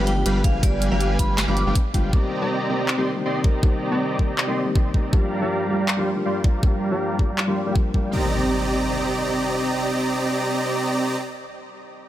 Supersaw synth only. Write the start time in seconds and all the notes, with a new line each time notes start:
Already playing: G3 G4 B4 F5 B5
0.26 G3 G4 B4 F5 B5
0.44 G3 G4 B4 F5 G#5
0.63 G3 G4 B4 F5 G#5
0.91 G3 G4 B4 F5 G#5
1.19 G3 G4
1.48 G3 G4 B4 F5 B5
1.67 G3 G4 B4 F5 G5
1.94 G3 G4 B4 F5 G5
2.13 C4 G4 D5 D#5 A#5
2.42 C4 G4 D5 D#5 A#5
2.69 C4 G4 D5 D#5 A#5
2.98 C4 G4 D5 D#5 C6
3.25 C4 G4 D5 D#5 C6
3.44 G4 D5 D#5 A#5
3.63 G4 D5 D#5
3.92 C4 G4 D5 D#5 A#5
4.19 C4 G4
4.48 C4 G4 D5 D#5 C6
4.76 C4 G4 D5 D#5 C6
4.94 C4 G4 D5 D#5 A#5
5.13 G3 G4 D5 F5 A#5
5.42 G3 G4 D5 F5 A#5
5.69 G3 G4 D5 F5 A#5
5.98 G3 G4 D5 F5 C6
6.25 G3 G4 D5 F5 C6
6.44 G3 D5 A#5
6.63 G3 G4 D5 F5 A#5
6.92 G3 G4 D5 F5 A#5
7.19 G3 G4 D5
7.48 G3 G4 D5 F5 C6
7.66 G3 G4 D5 F5 G5
7.94 G3 G4 D5 F5 G5
8.13 C4 G4 D5 D#5 A#5